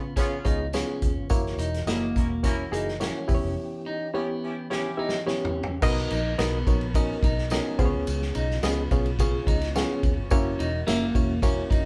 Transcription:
Already playing: fingered electric bass C#3, tonewheel organ C#3 B3 F4, clean electric guitar B3
0.16 reed electric piano B3 F4 G#4 C#5, horn section B3 C#4 F4, clean electric guitar C#4, kick, closed hi-hat, tambourine
0.45 fingered electric bass C#2, reed electric piano B3 F4 G#4 C#5, clean electric guitar D#4, kick, closed hi-hat, tambourine
0.73 reed electric piano B3 F4 G#4 C#5, clean electric guitar C#4, snare, closed hi-hat, tambourine
1.02 fingered electric bass D#2, kick, closed hi-hat, tambourine
1.16 fingered electric bass G1
1.30 fingered electric bass F#1, tonewheel organ E3 A#3 F#4, reed electric piano A#3 E4 F#4 C#5, kick, closed hi-hat, tambourine
1.46 snare
1.58 fingered electric bass E1, clean electric guitar D#4, closed hi-hat, tambourine
1.74 snare, closed hi-hat
1.86 fingered electric bass F#1, reed electric piano A#3 E4 F#4 D#5, clean electric guitar A#3, horn section A#3 C#4 E4, snare, closed hi-hat, tambourine
2.16 fingered electric bass E1, horn section A#3 C#4 E4, kick, closed hi-hat, tambourine
2.43 reed electric piano A#3 E4 F#4 C#5, horn section A#3 C#4 E4, clean electric guitar C#4, kick, closed hi-hat, tambourine
2.71 fingered electric bass F#1, reed electric piano A#3 E4 F#4 G#4, clean electric guitar D#4, closed hi-hat, tambourine
2.88 snare
3.00 reed electric piano A#3 E4 F#4 C#5, clean electric guitar C#4, snare, closed hi-hat, tambourine
3.28 fingered electric bass E1, reed electric piano B3 E4 G4 B4, tonewheel organ C#4 G4, kick, open hi-hat, tambourine
3.35 reed electric piano C#5
3.43 fingered electric bass F1
3.86 clean electric guitar D#4
4.14 reed electric piano B3 E4 G4 C#5, clean electric guitar B3, horn section C#4 E4 G4
4.43 horn section C#4 E4 G4
4.70 reed electric piano B3 E4 G4 C#5, horn section C#4 E4 G4, clean electric guitar C#4, snare
4.97 reed electric piano B3 E4 G4 E5, clean electric guitar D#4
5.09 snare
5.26 reed electric piano B3 E4 G4 C#5, clean electric guitar C#4, snare
5.45 floor tom
5.63 floor tom
5.81 fingered electric bass B1, tonewheel organ D#3 B3 A#4, reed electric piano B3 D#4 F#4 A#4 D#5, kick, crash, tambourine
5.97 snare
6.10 fingered electric bass A#1, clean electric guitar D#4, ride, tambourine
6.38 fingered electric bass B1, reed electric piano B3 D#4 F#4 A#4 D#5, clean electric guitar B3, snare, ride, tambourine
6.67 fingered electric bass A#1, reed electric piano B3 D#4 F#4 A#4 C#5, kick, ride, tambourine
6.81 ride
6.94 reed electric piano B3 D#4 F#4 A#4 D#5, clean electric guitar C#4, kick, ride, tambourine
7.23 fingered electric bass B1, clean electric guitar D#4, kick, ride, tambourine
7.38 snare
7.50 reed electric piano B3 D#4 F#4 A#4 D#5, clean electric guitar C#4, snare, ride, tambourine
7.79 fingered electric bass C#2, tonewheel organ C#3 F4, reed electric piano B3 C#4 F4 G#4 C5, kick, ride, tambourine
7.85 reed electric piano C#5
7.93 fingered electric bass D2
8.07 fingered electric bass C#2, ride, tambourine
8.22 snare
8.35 fingered electric bass B1, clean electric guitar D#4, ride, tambourine
8.51 snare
8.63 fingered electric bass C#2, clean electric guitar B3, reed electric piano B3 C#4 F4 G#4 D#5, snare, ride, tambourine
8.91 fingered electric bass B1, reed electric piano B3 C#4 F4 G#4 C#5, kick, ride, tambourine
9.06 ride
9.19 reed electric piano B3 C#4 F4 G#4 C#5, clean electric guitar C#4, kick, ride, tambourine
9.47 fingered electric bass C#2, clean electric guitar D#4, kick, ride, tambourine
9.62 snare, ride
9.76 reed electric piano B3 C#4 F4 G#4 C#5, clean electric guitar C#4, snare, ride, tambourine
10.03 fingered electric bass D#2, kick, ride, tambourine
10.18 fingered electric bass G1
10.29 fingered electric bass F#1, tonewheel organ A#3 E4 F#4, reed electric piano A#3 C#4 E4 F#4 C#5, kick, ride, tambourine
10.59 fingered electric bass E1, clean electric guitar D#4, ride, tambourine
10.87 fingered electric bass F#1, clean electric guitar A#3, reed electric piano A#3 C#4 E4 F#4 E5, snare, ride, tambourine
11.15 fingered electric bass E1, reed electric piano A#3 C#4 E4 F#4 C#5, kick, ride, tambourine
11.42 reed electric piano A#3 C#4 E4 F#4 C#5, clean electric guitar C#4, kick, ride, tambourine
11.70 fingered electric bass F#1, clean electric guitar D#4, kick, ride, tambourine

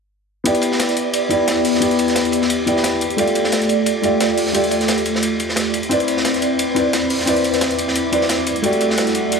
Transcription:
0.44 grand piano B3 E4 G4 D5, analog synth pad B3 E4 G4 D5, closed hi-hat, ride
0.54 closed hi-hat, ride
0.61 closed hi-hat, ride
0.72 snare
0.80 snare, closed hi-hat, ride
0.89 snare, closed hi-hat
0.97 closed hi-hat, ride
1.13 closed hi-hat, ride
1.29 grand piano B3 E4 G4 D5, closed hi-hat, ride
1.48 snare, closed hi-hat, ride
1.57 ride
1.65 closed hi-hat, open hi-hat
1.75 snare
1.80 grand piano B3 E4 G4 D5, closed hi-hat, ride
1.91 closed hi-hat
1.99 closed hi-hat, ride
2.08 snare, closed hi-hat
2.16 snare, closed hi-hat, ride
2.25 closed hi-hat
2.32 closed hi-hat, ride
2.42 snare
2.50 closed hi-hat, ride
2.66 grand piano B3 E4 G4 D5, closed hi-hat, ride
2.77 snare
2.84 snare, closed hi-hat, ride
3.01 analog synth pad A3 F4 D5, closed hi-hat, ride
3.10 closed hi-hat
3.16 grand piano A3 F4 G4 D5, closed hi-hat, ride
3.28 closed hi-hat, ride
3.35 closed hi-hat, ride
3.44 snare
3.52 snare, closed hi-hat, ride
3.62 snare, closed hi-hat
3.69 closed hi-hat, ride
3.86 closed hi-hat, ride
4.02 grand piano A3 F4 G4 D5, closed hi-hat, ride
4.20 snare, closed hi-hat, ride
4.30 ride
4.37 closed hi-hat, open hi-hat
4.47 snare
4.53 grand piano A3 F4 G4 D5, closed hi-hat, ride
4.64 closed hi-hat
4.71 closed hi-hat, ride
4.81 snare, closed hi-hat
4.88 snare, closed hi-hat, ride
4.98 closed hi-hat
5.06 closed hi-hat, ride
5.15 snare
5.23 closed hi-hat, ride
5.40 closed hi-hat, ride
5.49 snare
5.56 snare, closed hi-hat, ride
5.74 analog synth pad C4 E4 B4 D5, closed hi-hat, ride
5.83 closed hi-hat
5.89 grand piano C4 E4 B4 D5, closed hi-hat, ride
6.00 closed hi-hat, ride
6.08 closed hi-hat, ride
6.17 snare
6.24 snare, closed hi-hat, ride
6.34 snare, closed hi-hat
6.42 closed hi-hat, ride
6.59 closed hi-hat, ride
6.75 grand piano C4 E4 B4 D5, closed hi-hat, ride
6.93 snare, closed hi-hat, ride
7.02 ride
7.10 closed hi-hat, open hi-hat
7.19 snare
7.26 grand piano C4 E4 B4 D5, closed hi-hat, ride
7.37 closed hi-hat
7.44 closed hi-hat, ride
7.53 snare, closed hi-hat
7.61 snare, closed hi-hat, ride
7.71 closed hi-hat
7.79 closed hi-hat, ride
7.88 snare
7.95 closed hi-hat, ride
8.12 grand piano C4 E4 B4 D5, closed hi-hat, ride
8.21 snare
8.29 snare, closed hi-hat, ride
8.47 analog synth pad G3 A3 F#5, closed hi-hat, ride
8.56 closed hi-hat
8.62 grand piano A3 F#4 G4 D5, closed hi-hat, ride
8.72 closed hi-hat, ride
8.81 closed hi-hat, ride
8.90 snare
8.98 snare, closed hi-hat, ride
9.07 snare, closed hi-hat
9.14 closed hi-hat, ride
9.32 closed hi-hat, ride

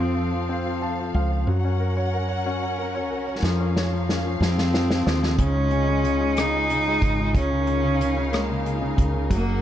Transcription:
Already playing: fretless electric bass F2, cello C4, string section C4 F4 A4 F5
0.00 grand piano F3
0.17 grand piano F3
0.33 grand piano F3
0.49 grand piano C4
0.66 grand piano F3
0.82 grand piano F3 A5
0.99 grand piano F3
1.14 fretless electric bass C#2, grand piano F3 F5
1.31 grand piano F3
1.46 fretless electric bass F#2, grand piano F#3, string section C#4 F#4 A#4 F#5
1.64 grand piano C#4
1.80 grand piano A#4
1.97 grand piano C#5
2.13 grand piano A#4
2.29 grand piano C#5
2.46 grand piano C#4
2.62 grand piano C#5
2.78 grand piano A#4
2.95 grand piano C#5
3.10 fretless electric bass C2, grand piano A#4
3.27 grand piano C#5
3.42 fretless electric bass F2, grand piano F3, string section F4 F5, snare
3.60 grand piano C#4
3.76 grand piano C#5, snare
3.93 grand piano F3
4.09 grand piano C#4, snare
4.25 grand piano F3
4.40 fretless electric bass F2, grand piano F3, string section C4 F4 A4, cello C4, snare
4.58 grand piano F3, snare
4.74 grand piano F3, snare
4.90 grand piano F3, snare
5.06 fretless electric bass D#2, grand piano F3, snare
5.23 grand piano F3, snare
5.38 fretless electric bass C#2, grand piano C#3, string section D#4 G#4 D#5, kick, closed hi-hat
5.42 cello C#4
5.57 grand piano G#3
5.71 grand piano C#3, closed hi-hat
5.88 grand piano G#3
6.04 grand piano C#3, closed hi-hat
6.21 grand piano G#3
6.37 grand piano C#3, cello D#4, cross-stick, closed hi-hat
6.54 grand piano G#3
6.70 grand piano C#3, closed hi-hat
6.88 grand piano G#3
7.02 fretless electric bass G#1, grand piano C#3, kick, closed hi-hat
7.20 grand piano G#3
7.34 fretless electric bass C#2, grand piano C#3, cello C#4, string section A#4 F5, kick, closed hi-hat
7.51 grand piano C#3
7.67 grand piano C#3, closed hi-hat
7.84 grand piano C#3
8.01 grand piano C#3, closed hi-hat
8.17 grand piano C#3
8.33 cello G#3, grand piano A#3, cross-stick, closed hi-hat
8.50 grand piano C#3
8.65 grand piano C#3, closed hi-hat
8.81 grand piano C#3
8.97 fretless electric bass C#2, grand piano C#3, kick, closed hi-hat
9.14 grand piano C#3
9.30 fretless electric bass F#1, grand piano F#3, string section G#4 F#5, kick, closed hi-hat
9.34 cello A#3
9.47 grand piano F#3

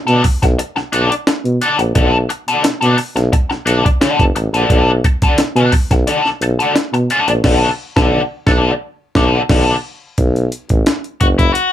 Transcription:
0.07 tuba B2, overdriven electric guitar D4 F#4 A4, closed hi-hat
0.23 muted overdriven electric guitar stroke, kick, open hi-hat
0.42 tuba B1, muted overdriven electric guitar stroke, kick, snare, closed hi-hat
0.59 muted overdriven electric guitar stroke, closed hi-hat
0.76 tuba B1, muted overdriven electric guitar stroke, snare
0.92 tuba B1, overdriven electric guitar D4 F#4 A4, closed hi-hat
1.10 muted overdriven electric guitar stroke, closed hi-hat
1.27 muted overdriven electric guitar stroke, snare, closed hi-hat
1.44 tuba B2, closed hi-hat
1.62 overdriven electric guitar D4 F#4 A4, closed hi-hat
1.79 tuba A#1, muted overdriven electric guitar stroke, closed hi-hat
1.95 tuba B1, overdriven electric guitar D4 F#4 A4, kick, closed hi-hat
2.29 muted overdriven electric guitar stroke, closed hi-hat
2.47 tuba B2, overdriven electric guitar D4 F#4 A4, closed hi-hat
2.63 tuba B2, muted overdriven electric guitar stroke, snare, closed hi-hat
2.81 tuba B2, overdriven electric guitar D4 F#4 A4, closed hi-hat
2.98 muted overdriven electric guitar stroke, open hi-hat
3.16 tuba B1, muted overdriven electric guitar stroke, snare, closed hi-hat
3.32 muted overdriven electric guitar stroke, kick, closed hi-hat
3.50 tuba B1, muted overdriven electric guitar stroke, snare
3.66 tuba B1, overdriven electric guitar D4 F#4 A4, closed hi-hat
3.85 muted overdriven electric guitar stroke, kick, closed hi-hat
4.01 overdriven electric guitar D4 F#4 A4, snare, closed hi-hat
4.19 tuba F#1, kick, closed hi-hat
4.35 tuba A1, muted overdriven electric guitar stroke, closed hi-hat
4.52 tuba A#1, overdriven electric guitar D4 F#4 A4, closed hi-hat
4.70 tuba B1, overdriven electric guitar D4 F#4 A4, kick, closed hi-hat
5.04 muted overdriven electric guitar stroke, kick, closed hi-hat
5.22 tuba B2, overdriven electric guitar D4 F#4 A4, kick, closed hi-hat
5.38 tuba B2, muted overdriven electric guitar stroke, snare, closed hi-hat
5.56 tuba B2, overdriven electric guitar D4 F#4 A4, closed hi-hat
5.72 muted overdriven electric guitar stroke, kick, open hi-hat
5.91 tuba B1, muted overdriven electric guitar stroke, kick, snare, closed hi-hat
6.07 overdriven electric guitar D4 F#4 A4, closed hi-hat
6.25 tuba B1, snare
6.41 tuba B1, muted overdriven electric guitar stroke, closed hi-hat
6.59 overdriven electric guitar D4 F#4 A4, closed hi-hat
6.76 snare, closed hi-hat
6.93 tuba B2, muted overdriven electric guitar stroke, closed hi-hat
7.10 overdriven electric guitar D4 F#4 A4, closed hi-hat
7.27 tuba A#1, muted overdriven electric guitar stroke, closed hi-hat
7.44 tuba B1, overdriven electric guitar D4 F#4 A4, kick, snare, crash
7.96 tuba B1, overdriven electric guitar D4 F#4 A4, kick, snare
8.46 tuba B1, overdriven electric guitar D4 F#4 A4, kick, snare
9.15 tuba B1, overdriven electric guitar D4 F#4 A4, kick, snare
9.49 tuba B1, overdriven electric guitar D4 F#4 A4, kick, snare, crash
10.18 tuba B1, kick, closed hi-hat
10.36 closed hi-hat
10.52 closed hi-hat
10.69 tuba A1, kick, closed hi-hat
10.86 snare, closed hi-hat
11.04 closed hi-hat
11.21 tuba F#1, overdriven electric guitar F#4, kick, closed hi-hat
11.38 overdriven electric guitar E4, kick, closed hi-hat
11.54 overdriven electric guitar F#4, closed hi-hat

